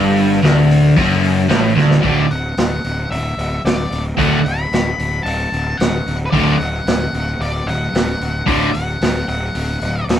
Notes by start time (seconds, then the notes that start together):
Already playing: G1 G2
0.17 open hi-hat
0.32 snare
0.43 D1 D2, snare, open hi-hat
0.71 open hi-hat
0.96 F#1 F#2, kick, open hi-hat
1.24 open hi-hat
1.49 A1 A2, snare, open hi-hat
1.76 D1 D2, snare
1.91 snare
2.01 D1 D2 A2 D3 D5, kick, open hi-hat
2.31 D1 F#5, open hi-hat
2.57 D1, snare, open hi-hat
2.84 D1, open hi-hat
3.11 D1 E5, open hi-hat
3.37 D1, open hi-hat
3.64 D1 D5, snare, open hi-hat
3.91 D1, open hi-hat
4.17 D1 D2 A2 D3 F#5, kick, open hi-hat
4.44 D1 B5, open hi-hat
4.71 D1, snare, open hi-hat
4.98 D1, open hi-hat
5.23 D1 A5, open hi-hat
5.52 D1, open hi-hat
5.77 D1 F#5, snare, open hi-hat
6.06 D1, open hi-hat
6.26 B4
6.30 D1 D2 A2 D3 D5, kick, open hi-hat
6.58 D1 F#5, open hi-hat
6.85 D1, snare, open hi-hat
7.13 D1, open hi-hat
7.39 D1 D5, open hi-hat
7.66 D1 F#5, open hi-hat
7.93 D1, snare, open hi-hat
8.20 D1, open hi-hat
8.46 D1 D2 A2 D3 D5, kick, open hi-hat
8.73 D1 F#5, open hi-hat
9.01 D1, snare, open hi-hat
9.28 D1 F#5, open hi-hat
9.55 D1, open hi-hat
9.81 D1, open hi-hat
10.07 D1, snare, open hi-hat